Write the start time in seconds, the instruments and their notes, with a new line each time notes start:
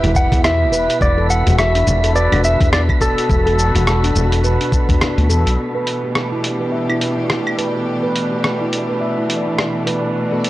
Already playing: string section B2 G4, electric slide guitar E5, synth texture B5
0.03 fretless electric bass E1, handpan E4, closed hi-hat
0.15 electric slide guitar F#5, kick, shaker
0.32 fretless electric bass E2, handpan E4, kick, closed hi-hat, udu, shaker
0.44 electric slide guitar E5, cross-stick, shaker
0.72 fretless electric bass E1, handpan B4, shaker
0.90 closed hi-hat, shaker
1.01 fretless electric bass E1, electric slide guitar D5, kick, shaker
1.18 handpan A4
1.30 electric slide guitar F#5, shaker
1.46 fretless electric bass E1, handpan F#4, string section F#4, closed hi-hat, udu, shaker
1.58 electric slide guitar E5, cross-stick, shaker
1.75 handpan D4, closed hi-hat, shaker
1.87 fretless electric bass E1, shaker
2.04 handpan A4, closed hi-hat, shaker
2.15 handpan B4, electric slide guitar D5, shaker
2.32 fretless electric bass E1, handpan D4, closed hi-hat, claves
2.44 electric slide guitar E5, shaker
2.61 fretless electric bass E2, handpan D4, kick, closed hi-hat, shaker
2.73 electric slide guitar D5, cross-stick, shaker
2.89 kick, claves
3.01 fretless electric bass E1, handpan A4, electric slide guitar A4, kick, shaker
3.18 closed hi-hat, shaker
3.30 fretless electric bass E1, kick, shaker
3.46 handpan A4, closed hi-hat
3.59 shaker
3.75 fretless electric bass E1, handpan F#4, closed hi-hat, udu, shaker
3.87 cross-stick, shaker
4.04 handpan D4, closed hi-hat, shaker
4.15 fretless electric bass E1, shaker
4.32 handpan A4, closed hi-hat, shaker
4.44 handpan B4, shaker
4.61 handpan D4, closed hi-hat
4.72 kick, shaker
4.89 handpan D4, kick, closed hi-hat, udu, shaker
5.01 cross-stick, shaker
5.18 fretless electric bass D2, closed hi-hat
5.29 fretless electric bass E2, handpan A4, shaker
5.46 fretless electric bass B1, closed hi-hat, shaker
5.58 synth texture D5
5.69 string section A3
5.75 handpan B4
5.79 string section E3
5.87 closed hi-hat
6.03 handpan G4, string section G4
6.12 string section D4, cross-stick
6.32 handpan E4
6.44 closed hi-hat
6.60 handpan B4
6.72 handpan E5
6.89 handpan E4, claves
7.01 closed hi-hat
7.18 handpan E4
7.30 cross-stick
7.47 claves
7.58 handpan B4, closed hi-hat
8.03 handpan B4
8.15 closed hi-hat
8.31 handpan G4
8.44 cross-stick
8.60 handpan E4
8.73 closed hi-hat
8.89 handpan B4
9.01 handpan E5
9.18 handpan E4
9.30 closed hi-hat
9.46 handpan E4
9.59 cross-stick
9.86 handpan B4, closed hi-hat
10.15 string section E2
10.27 string section F#4
10.32 handpan A4
10.44 closed hi-hat